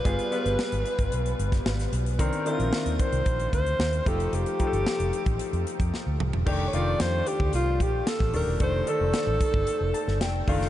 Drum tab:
CC |----------------|----------------|----------------|x---------------|
HH |xxxx-xxxxxxx-xxx|xxxx-xxxxxxx-xxx|xxxx-xxxxxxx----|--x-x-x-x-x-x-o-|
SD |----o------ooo--|----o-------o---|----o-------o---|----o-------oo--|
T2 |----------------|----------------|--------------o-|----------------|
FT |----------------|----------------|---------------o|----------------|
BD |o------o---o----|o-----o-o-o---o-|--o----o---o----|o------o--o--o--|

CC |----------------|
HH |x-x-x-x-x-x-x-o-|
SD |----o------oo--o|
T2 |----------------|
FT |----------------|
BD |o-----oo------o-|